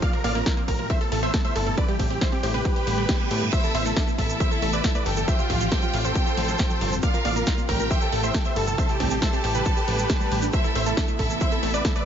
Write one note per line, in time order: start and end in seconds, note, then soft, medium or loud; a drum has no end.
0.00 0.89 A#2 medium
0.00 1.74 C3 medium
0.00 0.87 F3 medium
0.00 0.10 A#3 medium
0.00 0.89 C4 medium
0.00 0.87 F4 loud
0.00 0.11 D5 medium
0.00 0.11 F5 loud
0.00 kick loud
0.00 closed hi-hat loud
0.00 ride medium
0.13 0.18 F3 medium
0.13 0.22 A#4 medium
0.13 closed hi-hat medium
0.24 0.42 A1 loud
0.24 0.34 A#3 loud
0.24 0.33 D5 medium
0.24 0.33 F5 loud
0.24 open hi-hat loud
0.24 ride medium
0.35 0.43 A#3 loud
0.35 0.44 A#4 medium
0.35 closed hi-hat medium
0.46 0.57 E4 loud
0.46 0.55 A#4 medium
0.46 kick loud
0.46 snare loud
0.46 closed hi-hat loud
0.46 ride medium
0.57 0.68 A#3 loud
0.57 closed hi-hat medium
0.68 0.86 A1 loud
0.68 0.76 A#4 medium
0.68 0.78 A#4 medium
0.68 kick medium
0.68 open hi-hat loud
0.68 ride medium
0.79 0.89 A#2 medium
0.79 0.87 A#4 medium
0.79 closed hi-hat medium
0.90 0.98 E3 medium
0.90 2.63 E3 medium
0.90 1.77 A3 medium
0.90 1.77 B3 medium
0.90 2.63 E4 loud
0.90 0.98 C5 medium
0.90 0.98 E5 loud
0.90 kick loud
0.90 closed hi-hat medium
0.90 ride medium
1.01 1.09 A4 medium
1.01 1.11 A4 loud
1.01 1.09 A4 medium
1.01 closed hi-hat medium
1.12 1.30 A1 medium
1.12 1.22 A3 loud
1.12 1.20 A4 medium
1.12 open hi-hat loud
1.12 ride medium
1.23 1.30 A3 loud
1.23 1.31 C5 medium
1.23 1.31 E5 medium
1.23 closed hi-hat medium
1.34 1.42 A4 medium
1.34 1.38 A4 loud
1.34 kick loud
1.34 snare loud
1.34 closed hi-hat loud
1.34 ride medium
1.44 1.52 A3 medium
1.44 1.53 C5 medium
1.44 1.53 E5 medium
1.44 1.53 E5 loud
1.44 closed hi-hat medium
1.55 1.74 G1 loud
1.55 1.64 A4 medium
1.55 1.66 A4 medium
1.55 open hi-hat loud
1.55 ride medium
1.66 1.77 A2 medium
1.66 1.75 A4 medium
1.66 closed hi-hat medium
1.77 2.64 C3 medium
1.77 3.51 G3 medium
1.77 1.85 C4 medium
1.77 3.51 G4 medium
1.77 1.86 B4 medium
1.77 1.86 D5 medium
1.77 1.86 D5 loud
1.77 kick loud
1.77 closed hi-hat loud
1.77 ride medium
1.88 1.93 G3 medium
1.88 1.97 G4 medium
1.88 closed hi-hat medium
1.99 2.18 A1 loud
1.99 2.09 C4 loud
1.99 2.08 G4 medium
1.99 kick medium
1.99 open hi-hat loud
1.99 ride medium
2.10 2.18 C4 loud
2.10 2.19 G4 medium
2.10 closed hi-hat medium
2.21 2.30 E4 medium
2.21 2.32 E4 loud
2.21 2.30 C5 medium
2.21 2.30 C5 loud
2.21 kick loud
2.21 snare loud
2.21 closed hi-hat loud
2.21 ride medium
2.32 2.43 C4 loud
2.32 2.41 G4 medium
2.32 closed hi-hat medium
2.43 2.61 A1 loud
2.43 2.52 G4 medium
2.43 2.54 C5 medium
2.43 open hi-hat loud
2.43 ride medium
2.54 2.65 C3 medium
2.54 3.44 G4 medium
2.54 3.44 B4 loud
2.54 closed hi-hat medium
2.65 3.52 D3 medium
2.65 2.73 D3 medium
2.65 5.25 A3 medium
2.65 5.25 B3 medium
2.65 kick loud
2.65 closed hi-hat medium
2.65 ride medium
2.65 reverse cymbal medium
2.76 2.87 G4 loud
2.76 closed hi-hat medium
2.87 3.05 A1 medium
2.87 2.97 G3 loud
2.87 open hi-hat loud
2.87 ride medium
2.98 3.06 G3 loud
2.98 closed hi-hat medium
3.09 3.13 G4 loud
3.09 kick loud
3.09 snare loud
3.09 closed hi-hat loud
3.09 ride medium
3.20 3.27 G3 medium
3.20 closed hi-hat medium
3.31 3.49 A2 medium
3.31 3.41 G4 medium
3.31 open hi-hat loud
3.31 ride medium
3.42 3.52 G2 medium
3.42 closed hi-hat medium
3.52 5.26 C3 medium
3.52 5.26 E3 medium
3.52 3.60 A3 medium
3.52 5.26 E4 loud
3.52 4.10 E4 medium
3.52 3.61 C5 medium
3.52 3.61 E5 loud
3.52 4.10 E5 loud
3.52 3.61 E5 loud
3.52 kick loud
3.52 closed hi-hat loud
3.52 crash medium
3.52 ride medium
3.52 shaker medium
3.64 3.68 E3 medium
3.64 3.72 A4 medium
3.64 closed hi-hat medium
3.64 shaker soft
3.75 3.93 A1 loud
3.75 3.84 A3 loud
3.75 3.83 C5 medium
3.75 3.83 E5 loud
3.75 open hi-hat loud
3.75 ride medium
3.86 3.93 A3 loud
3.86 3.94 A4 medium
3.86 closed hi-hat medium
3.86 shaker medium
3.96 4.07 D4 loud
3.96 4.05 A4 medium
3.96 kick loud
3.96 snare loud
3.96 closed hi-hat loud
3.96 shaker medium
4.08 4.18 A3 loud
4.08 closed hi-hat medium
4.08 shaker soft
4.18 4.37 A1 loud
4.18 4.97 E4 medium
4.18 4.27 A4 medium
4.18 4.29 A4 medium
4.18 4.97 E5 loud
4.18 kick medium
4.18 open hi-hat loud
4.18 ride medium
4.29 4.40 A2 medium
4.29 4.38 A4 medium
4.29 closed hi-hat medium
4.29 shaker medium
4.40 4.48 E3 medium
4.40 4.49 C5 medium
4.40 4.49 E5 medium
4.40 kick loud
4.40 closed hi-hat loud
4.40 ride medium
4.40 shaker medium
4.51 4.60 A4 medium
4.51 4.62 A4 loud
4.51 4.60 A4 medium
4.51 closed hi-hat medium
4.51 shaker soft
4.62 4.80 A1 medium
4.62 4.72 A3 loud
4.62 4.71 A4 medium
4.62 open hi-hat loud
4.62 ride medium
4.73 4.81 A3 loud
4.73 4.82 B4 medium
4.73 4.82 D5 medium
4.73 shaker medium
4.84 4.89 A4 loud
4.84 4.93 A4 medium
4.84 kick loud
4.84 snare loud
4.84 closed hi-hat loud
4.84 ride medium
4.84 shaker medium
4.95 5.03 A3 medium
4.95 5.04 B4 medium
4.95 5.03 D5 medium
4.95 5.04 D5 medium
4.95 closed hi-hat medium
4.95 shaker soft
5.06 5.24 G1 loud
5.06 6.94 G4 medium
5.06 5.16 A4 medium
5.06 5.14 A4 medium
5.06 6.94 G5 loud
5.06 open hi-hat loud
5.06 ride medium
5.17 5.27 A2 medium
5.17 5.25 A4 medium
5.17 5.26 A4 medium
5.17 closed hi-hat medium
5.17 shaker medium
5.28 7.01 A2 medium
5.28 7.01 C3 medium
5.28 7.88 F3 medium
5.28 5.35 F3 medium
5.28 7.88 C4 medium
5.28 7.01 F4 loud
5.28 5.36 C5 medium
5.28 5.36 E5 loud
5.28 kick loud
5.28 closed hi-hat loud
5.28 ride medium
5.28 shaker medium
5.39 5.43 C3 medium
5.39 5.47 F4 medium
5.39 closed hi-hat medium
5.39 shaker soft
5.50 5.68 A1 loud
5.50 5.60 F3 loud
5.50 5.58 F4 medium
5.50 kick medium
5.50 open hi-hat loud
5.50 ride medium
5.61 5.68 F3 loud
5.61 5.69 F4 medium
5.61 closed hi-hat medium
5.61 shaker medium
5.72 5.82 B3 loud
5.72 5.80 A4 medium
5.72 5.80 C5 loud
5.72 5.80 C5 medium
5.72 kick loud
5.72 snare loud
5.72 closed hi-hat loud
5.72 ride medium
5.72 shaker medium
5.82 5.93 F3 loud
5.82 5.91 F4 medium
5.82 closed hi-hat medium
5.82 shaker soft
5.94 6.12 A1 loud
5.94 6.04 F4 medium
5.94 6.02 F4 medium
5.94 open hi-hat loud
5.94 ride medium
6.05 6.15 F2 medium
6.05 6.94 A4 medium
6.05 6.94 C5 medium
6.05 6.94 C5 loud
6.05 closed hi-hat medium
6.05 shaker medium
6.15 6.23 C3 medium
6.15 kick loud
6.15 closed hi-hat loud
6.15 ride medium
6.15 shaker medium
6.26 6.37 F4 loud
6.26 closed hi-hat medium
6.26 shaker soft
6.37 6.56 A1 medium
6.37 6.47 F3 loud
6.37 open hi-hat loud
6.37 ride medium
6.48 6.56 F3 loud
6.48 closed hi-hat medium
6.48 shaker medium
6.58 6.64 F4 loud
6.58 kick loud
6.58 snare loud
6.58 closed hi-hat loud
6.58 ride medium
6.58 shaker medium
6.70 6.78 F3 medium
6.70 closed hi-hat medium
6.70 shaker soft
6.81 6.99 G1 loud
6.81 6.92 F4 medium
6.81 open hi-hat loud
6.81 ride medium
6.92 7.03 F2 medium
6.92 closed hi-hat medium
6.92 shaker medium
7.03 7.90 A#2 medium
7.03 7.89 C3 medium
7.03 7.11 A#3 medium
7.03 7.90 F4 medium
7.03 7.60 F4 medium
7.03 7.12 D5 medium
7.03 7.11 F5 loud
7.03 7.60 F5 loud
7.03 7.12 F5 loud
7.03 kick loud
7.03 closed hi-hat medium
7.03 ride medium
7.03 shaker medium
7.14 7.19 F3 medium
7.14 7.22 A#4 medium
7.14 closed hi-hat medium
7.14 shaker soft
7.25 7.43 A1 loud
7.25 7.35 A#3 loud
7.25 7.33 D5 medium
7.25 7.33 F5 medium
7.25 7.33 F5 loud
7.25 open hi-hat loud
7.25 ride medium
7.36 7.44 A#3 loud
7.36 7.44 A#4 medium
7.36 closed hi-hat medium
7.36 shaker medium
7.46 7.57 E4 loud
7.46 7.55 A#4 medium
7.46 kick loud
7.46 snare loud
7.46 closed hi-hat medium
7.46 ride medium
7.46 shaker medium
7.58 7.68 A#3 loud
7.58 closed hi-hat medium
7.58 shaker soft
7.69 7.87 A1 loud
7.69 8.48 G4 medium
7.69 7.77 A#4 medium
7.69 7.79 A#4 medium
7.69 7.77 A#4 medium
7.69 8.48 G5 loud
7.69 kick medium
7.69 open hi-hat loud
7.69 ride medium
7.80 7.90 A#2 medium
7.80 7.88 A#4 medium
7.80 shaker medium
7.91 9.64 C3 medium
7.91 7.98 E3 medium
7.91 9.64 E3 medium
7.91 8.77 A3 medium
7.91 8.77 B3 medium
7.91 9.64 E4 loud
7.91 7.99 C5 medium
7.91 7.99 E5 loud
7.91 7.99 E5 medium
7.91 kick loud
7.91 closed hi-hat medium
7.91 ride medium
7.91 shaker medium
8.01 8.10 A4 medium
8.01 8.12 A4 loud
8.01 8.10 A4 medium
8.01 closed hi-hat medium
8.01 shaker soft
8.12 8.31 A1 medium
8.12 8.22 A3 loud
8.12 8.21 A4 medium
8.12 open hi-hat loud
8.12 ride medium
8.23 8.31 A3 loud
8.23 8.32 C5 medium
8.23 8.32 E5 medium
8.23 closed hi-hat medium
8.23 shaker medium
8.34 8.39 A4 loud
8.34 8.43 A4 medium
8.34 kick loud
8.34 snare loud
8.34 closed hi-hat medium
8.34 ride medium
8.34 shaker medium
8.45 8.53 A3 medium
8.45 8.54 C5 medium
8.45 8.54 E5 medium
8.45 8.54 E5 loud
8.45 closed hi-hat soft
8.45 shaker soft
8.56 8.75 G1 loud
8.56 8.65 A4 medium
8.56 10.45 A4 medium
8.56 8.67 A4 medium
8.56 8.65 A4 medium
8.56 10.45 A5 loud
8.56 open hi-hat loud
8.56 ride medium
8.67 8.78 A2 medium
8.67 8.76 A4 medium
8.67 closed hi-hat medium
8.67 shaker medium
8.78 10.52 G3 medium
8.78 8.86 C4 medium
8.78 10.52 G4 loud
8.78 8.87 C5 medium
8.78 8.87 E5 loud
8.78 8.87 E5 medium
8.78 kick loud
8.78 closed hi-hat medium
8.78 ride medium
8.78 shaker medium
8.89 8.94 G3 medium
8.89 8.98 G4 medium
8.89 closed hi-hat medium
8.89 shaker soft
9.00 9.18 A1 loud
9.00 9.10 C4 loud
9.00 9.09 G4 medium
9.00 kick medium
9.00 open hi-hat loud
9.00 ride medium
9.10 9.19 C4 loud
9.10 9.19 G4 medium
9.10 9.20 G4 medium
9.10 closed hi-hat soft
9.10 shaker medium
9.22 9.32 E4 loud
9.22 9.31 C5 medium
9.22 9.30 E5 loud
9.22 9.31 E5 medium
9.22 kick loud
9.22 snare loud
9.22 closed hi-hat medium
9.22 ride medium
9.22 shaker medium
9.33 9.43 C4 loud
9.33 9.41 G4 medium
9.33 closed hi-hat medium
9.33 shaker soft
9.44 9.62 A1 loud
9.44 9.52 G4 medium
9.44 9.54 C5 medium
9.44 open hi-hat loud
9.44 ride medium
9.55 9.65 C3 medium
9.55 10.45 G4 medium
9.55 10.45 B4 loud
9.55 closed hi-hat soft
9.55 shaker medium
9.65 10.52 D3 medium
9.65 9.73 D3 medium
9.65 12.05 A3 medium
9.65 10.52 B3 medium
9.65 kick loud
9.65 closed hi-hat medium
9.65 ride medium
9.65 shaker medium
9.77 9.87 G4 loud
9.77 closed hi-hat soft
9.77 shaker soft
9.88 10.06 A1 medium
9.88 9.92 F3 medium
9.88 open hi-hat loud
9.88 ride medium
9.99 10.06 G3 medium
9.99 closed hi-hat soft
9.99 shaker medium
10.10 10.17 G4 medium
10.10 kick loud
10.10 snare loud
10.10 closed hi-hat medium
10.10 ride medium
10.10 shaker medium
10.21 10.28 G3 medium
10.21 closed hi-hat soft
10.21 shaker soft
10.31 10.50 A1 medium
10.31 10.42 G3 medium
10.31 open hi-hat loud
10.31 ride medium
10.42 10.53 D4 loud
10.42 closed hi-hat medium
10.42 shaker medium
10.53 12.05 C3 medium
10.53 12.05 E3 medium
10.53 10.61 A3 medium
10.53 12.05 B3 medium
10.53 12.05 E4 loud
10.53 11.10 E4 medium
10.53 10.62 C5 medium
10.53 10.62 E5 loud
10.53 11.10 E5 loud
10.53 kick loud
10.53 closed hi-hat medium
10.53 ride medium
10.53 shaker medium
10.64 10.69 E3 medium
10.64 10.73 A4 medium
10.64 closed hi-hat soft
10.64 shaker soft
10.75 10.94 A1 loud
10.75 10.85 A3 loud
10.75 10.84 C5 medium
10.75 10.84 E5 loud
10.75 10.84 E5 medium
10.75 open hi-hat loud
10.75 ride medium
10.86 10.94 A3 loud
10.86 10.95 A4 medium
10.86 shaker medium
10.97 11.08 D4 loud
10.97 11.06 A4 medium
10.97 kick loud
10.97 snare loud
10.97 closed hi-hat medium
10.97 ride medium
10.97 shaker medium
11.08 11.19 A3 loud
11.08 closed hi-hat medium
11.08 shaker soft
11.19 11.37 A1 loud
11.19 11.98 E4 medium
11.19 11.28 A4 medium
11.19 11.30 A4 medium
11.19 11.28 A4 medium
11.19 11.98 E5 loud
11.19 kick medium
11.19 open hi-hat loud
11.19 ride medium
11.30 11.40 A2 medium
11.30 11.38 A4 medium
11.30 11.39 A4 medium
11.30 closed hi-hat medium
11.30 shaker medium
11.41 11.49 E3 medium
11.41 11.50 C5 medium
11.41 11.49 E5 loud
11.41 11.50 E5 medium
11.41 kick loud
11.41 closed hi-hat medium
11.41 ride medium
11.41 shaker medium
11.52 11.60 A4 medium
11.52 11.62 A4 loud
11.52 11.61 A4 medium
11.52 closed hi-hat soft
11.52 shaker soft
11.63 11.81 A1 medium
11.63 11.73 A3 loud
11.63 11.71 A4 medium
11.63 open hi-hat loud
11.63 ride medium
11.74 11.81 A3 loud
11.74 11.82 B4 medium
11.74 11.82 D5 medium
11.74 closed hi-hat medium
11.74 shaker medium
11.85 11.93 A4 medium
11.85 11.89 A4 loud
11.85 11.93 A4 medium
11.85 kick loud
11.85 snare loud
11.85 closed hi-hat medium
11.85 ride medium
11.85 shaker medium
11.95 12.03 A3 medium
11.95 12.04 B4 medium
11.95 12.04 D5 medium
11.95 12.04 D5 loud
11.95 closed hi-hat soft
11.95 shaker soft